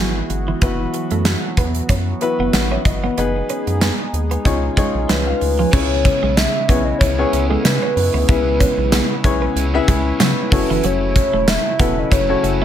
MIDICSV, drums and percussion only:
0, 0, Header, 1, 2, 480
1, 0, Start_track
1, 0, Tempo, 638298
1, 470, Time_signature, 4, 2, 24, 8
1, 9512, End_track
2, 0, Start_track
2, 0, Title_t, "Drums"
2, 225, Note_on_c, 9, 42, 77
2, 300, Note_off_c, 9, 42, 0
2, 463, Note_on_c, 9, 42, 78
2, 465, Note_on_c, 9, 36, 116
2, 538, Note_off_c, 9, 42, 0
2, 540, Note_off_c, 9, 36, 0
2, 704, Note_on_c, 9, 42, 67
2, 779, Note_off_c, 9, 42, 0
2, 832, Note_on_c, 9, 42, 56
2, 907, Note_off_c, 9, 42, 0
2, 941, Note_on_c, 9, 38, 108
2, 941, Note_on_c, 9, 42, 92
2, 1016, Note_off_c, 9, 38, 0
2, 1016, Note_off_c, 9, 42, 0
2, 1182, Note_on_c, 9, 36, 88
2, 1182, Note_on_c, 9, 42, 72
2, 1257, Note_off_c, 9, 42, 0
2, 1258, Note_off_c, 9, 36, 0
2, 1312, Note_on_c, 9, 42, 50
2, 1388, Note_off_c, 9, 42, 0
2, 1421, Note_on_c, 9, 42, 77
2, 1422, Note_on_c, 9, 36, 81
2, 1496, Note_off_c, 9, 42, 0
2, 1498, Note_off_c, 9, 36, 0
2, 1662, Note_on_c, 9, 42, 73
2, 1737, Note_off_c, 9, 42, 0
2, 1905, Note_on_c, 9, 38, 102
2, 1905, Note_on_c, 9, 42, 85
2, 1980, Note_off_c, 9, 38, 0
2, 1981, Note_off_c, 9, 42, 0
2, 2145, Note_on_c, 9, 36, 93
2, 2147, Note_on_c, 9, 42, 76
2, 2220, Note_off_c, 9, 36, 0
2, 2222, Note_off_c, 9, 42, 0
2, 2388, Note_on_c, 9, 42, 81
2, 2464, Note_off_c, 9, 42, 0
2, 2627, Note_on_c, 9, 42, 63
2, 2702, Note_off_c, 9, 42, 0
2, 2761, Note_on_c, 9, 42, 56
2, 2836, Note_off_c, 9, 42, 0
2, 2868, Note_on_c, 9, 38, 105
2, 2868, Note_on_c, 9, 42, 86
2, 2943, Note_off_c, 9, 38, 0
2, 2944, Note_off_c, 9, 42, 0
2, 3112, Note_on_c, 9, 42, 67
2, 3188, Note_off_c, 9, 42, 0
2, 3242, Note_on_c, 9, 42, 48
2, 3317, Note_off_c, 9, 42, 0
2, 3348, Note_on_c, 9, 36, 88
2, 3355, Note_on_c, 9, 42, 74
2, 3424, Note_off_c, 9, 36, 0
2, 3430, Note_off_c, 9, 42, 0
2, 3587, Note_on_c, 9, 36, 81
2, 3590, Note_on_c, 9, 42, 73
2, 3663, Note_off_c, 9, 36, 0
2, 3665, Note_off_c, 9, 42, 0
2, 3831, Note_on_c, 9, 38, 101
2, 3831, Note_on_c, 9, 42, 88
2, 3906, Note_off_c, 9, 38, 0
2, 3906, Note_off_c, 9, 42, 0
2, 4070, Note_on_c, 9, 46, 79
2, 4146, Note_off_c, 9, 46, 0
2, 4310, Note_on_c, 9, 36, 116
2, 4312, Note_on_c, 9, 49, 101
2, 4385, Note_off_c, 9, 36, 0
2, 4387, Note_off_c, 9, 49, 0
2, 4550, Note_on_c, 9, 36, 87
2, 4552, Note_on_c, 9, 42, 68
2, 4625, Note_off_c, 9, 36, 0
2, 4627, Note_off_c, 9, 42, 0
2, 4793, Note_on_c, 9, 38, 115
2, 4793, Note_on_c, 9, 42, 92
2, 4793, Note_on_c, 9, 54, 61
2, 4868, Note_off_c, 9, 38, 0
2, 4868, Note_off_c, 9, 42, 0
2, 4868, Note_off_c, 9, 54, 0
2, 5030, Note_on_c, 9, 36, 97
2, 5035, Note_on_c, 9, 42, 76
2, 5105, Note_off_c, 9, 36, 0
2, 5110, Note_off_c, 9, 42, 0
2, 5271, Note_on_c, 9, 36, 98
2, 5278, Note_on_c, 9, 42, 87
2, 5346, Note_off_c, 9, 36, 0
2, 5353, Note_off_c, 9, 42, 0
2, 5514, Note_on_c, 9, 42, 81
2, 5589, Note_off_c, 9, 42, 0
2, 5752, Note_on_c, 9, 54, 66
2, 5753, Note_on_c, 9, 38, 115
2, 5753, Note_on_c, 9, 42, 94
2, 5827, Note_off_c, 9, 54, 0
2, 5828, Note_off_c, 9, 38, 0
2, 5828, Note_off_c, 9, 42, 0
2, 5994, Note_on_c, 9, 46, 86
2, 6069, Note_off_c, 9, 46, 0
2, 6231, Note_on_c, 9, 42, 89
2, 6232, Note_on_c, 9, 36, 122
2, 6306, Note_off_c, 9, 42, 0
2, 6307, Note_off_c, 9, 36, 0
2, 6471, Note_on_c, 9, 36, 88
2, 6474, Note_on_c, 9, 42, 69
2, 6546, Note_off_c, 9, 36, 0
2, 6549, Note_off_c, 9, 42, 0
2, 6709, Note_on_c, 9, 38, 120
2, 6709, Note_on_c, 9, 42, 94
2, 6709, Note_on_c, 9, 54, 64
2, 6784, Note_off_c, 9, 38, 0
2, 6784, Note_off_c, 9, 54, 0
2, 6785, Note_off_c, 9, 42, 0
2, 6950, Note_on_c, 9, 36, 97
2, 6953, Note_on_c, 9, 42, 76
2, 7025, Note_off_c, 9, 36, 0
2, 7028, Note_off_c, 9, 42, 0
2, 7194, Note_on_c, 9, 42, 80
2, 7269, Note_off_c, 9, 42, 0
2, 7430, Note_on_c, 9, 36, 93
2, 7432, Note_on_c, 9, 42, 81
2, 7505, Note_off_c, 9, 36, 0
2, 7507, Note_off_c, 9, 42, 0
2, 7670, Note_on_c, 9, 54, 65
2, 7671, Note_on_c, 9, 38, 109
2, 7671, Note_on_c, 9, 42, 93
2, 7745, Note_off_c, 9, 54, 0
2, 7746, Note_off_c, 9, 38, 0
2, 7746, Note_off_c, 9, 42, 0
2, 7910, Note_on_c, 9, 36, 108
2, 7910, Note_on_c, 9, 46, 85
2, 7985, Note_off_c, 9, 36, 0
2, 7985, Note_off_c, 9, 46, 0
2, 8148, Note_on_c, 9, 42, 86
2, 8223, Note_off_c, 9, 42, 0
2, 8390, Note_on_c, 9, 36, 89
2, 8391, Note_on_c, 9, 42, 72
2, 8465, Note_off_c, 9, 36, 0
2, 8466, Note_off_c, 9, 42, 0
2, 8630, Note_on_c, 9, 38, 120
2, 8630, Note_on_c, 9, 54, 65
2, 8631, Note_on_c, 9, 42, 90
2, 8706, Note_off_c, 9, 38, 0
2, 8706, Note_off_c, 9, 42, 0
2, 8706, Note_off_c, 9, 54, 0
2, 8870, Note_on_c, 9, 36, 95
2, 8873, Note_on_c, 9, 42, 80
2, 8945, Note_off_c, 9, 36, 0
2, 8948, Note_off_c, 9, 42, 0
2, 9111, Note_on_c, 9, 36, 94
2, 9115, Note_on_c, 9, 42, 78
2, 9186, Note_off_c, 9, 36, 0
2, 9190, Note_off_c, 9, 42, 0
2, 9355, Note_on_c, 9, 42, 81
2, 9431, Note_off_c, 9, 42, 0
2, 9512, End_track
0, 0, End_of_file